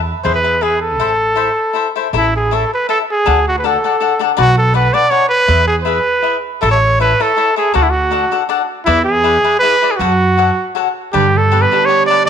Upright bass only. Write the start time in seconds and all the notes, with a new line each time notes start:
Already playing: E2
0.25 E2
0.98 A1
2.13 A1
3.27 D2
4.38 B1
5.48 E2
6.63 A1
7.75 D2
8.87 E2
9.99 F#2
11.14 G2